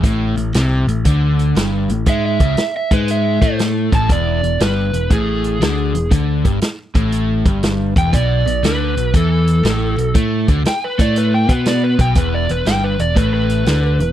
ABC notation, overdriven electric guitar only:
X:1
M:4/4
L:1/8
Q:"Swing" 1/4=119
K:A
V:1 name="Overdriven electric guitar" clef=bass
A,, A,, =C, A,, D,2 =G,, A,, | G, C, z G,2 A,2 A,, | E,, E,, =G,, E,, A,,2 D, E,, | D, =G,, z A,,2 G,,2 E,, |
B,, B,, D, B,, E,2 A,, B,, | A, D, z A,2 B,2 B,, | E,, E,, =G,, E,, A,,2 D, E,, |]